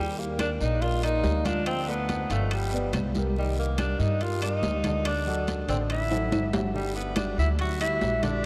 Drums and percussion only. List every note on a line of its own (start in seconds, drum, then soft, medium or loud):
0.19 high conga soft
0.39 high conga medium
0.39 high timbale medium
0.39 low timbale medium
0.39 short guiro medium
0.39 claves medium
0.60 high conga soft
0.60 short guiro medium
0.81 high conga soft
0.81 high timbale medium
0.81 long guiro medium
1.03 high conga soft
1.03 high timbale medium
1.03 claves medium
1.24 high conga medium
1.24 low timbale medium
1.24 short guiro medium
1.45 high conga medium
1.45 high timbale medium
1.45 short guiro medium
1.66 high conga soft
1.66 high timbale medium
1.66 long guiro medium
1.66 claves medium
1.89 high conga soft
2.09 high conga medium
2.09 high timbale medium
2.09 low timbale medium
2.09 short guiro medium
2.30 high conga soft
2.30 high timbale medium
2.30 short guiro medium
2.51 high conga soft
2.51 high timbale medium
2.51 long guiro medium
2.51 claves medium
2.73 high conga soft
2.93 high conga medium
2.93 high timbale medium
2.93 low timbale medium
2.93 short guiro medium
2.93 claves medium
3.15 high conga medium
3.15 short guiro medium
3.36 high conga soft
3.36 long guiro medium
3.58 high conga soft
3.78 high conga medium
3.78 high timbale medium
3.78 low timbale medium
3.78 short guiro medium
3.78 claves medium
4.00 high conga soft
4.00 short guiro medium
4.21 high conga soft
4.21 high timbale medium
4.21 long guiro medium
4.42 high conga soft
4.42 high timbale medium
4.42 claves medium
4.63 high conga medium
4.63 low timbale medium
4.63 short guiro medium
4.84 high conga medium
4.84 high timbale medium
4.84 short guiro medium
5.05 high conga soft
5.05 high timbale medium
5.05 long guiro medium
5.05 claves soft
5.27 high conga soft
5.47 high conga medium
5.47 high timbale medium
5.47 low timbale medium
5.47 short guiro medium
5.69 high conga soft
5.69 high timbale medium
5.69 short guiro medium
5.90 high conga soft
5.90 high timbale medium
5.90 long guiro medium
5.90 claves medium
6.11 high conga soft
6.11 high timbale medium
6.32 high conga medium
6.32 high timbale medium
6.32 short guiro medium
6.32 claves medium
6.53 high conga medium
6.53 low timbale medium
6.53 short guiro medium
6.74 high conga soft
6.74 long guiro medium
6.96 high conga soft
7.16 high conga medium
7.16 high timbale medium
7.16 low timbale medium
7.16 short guiro medium
7.16 claves medium
7.38 high conga soft
7.38 short guiro medium
7.59 high conga soft
7.59 high timbale medium
7.59 long guiro medium
7.80 high conga soft
7.80 high timbale medium
7.80 claves medium
8.01 high conga medium
8.01 low timbale medium
8.01 short guiro medium
8.23 high conga medium
8.23 high timbale medium
8.23 short guiro medium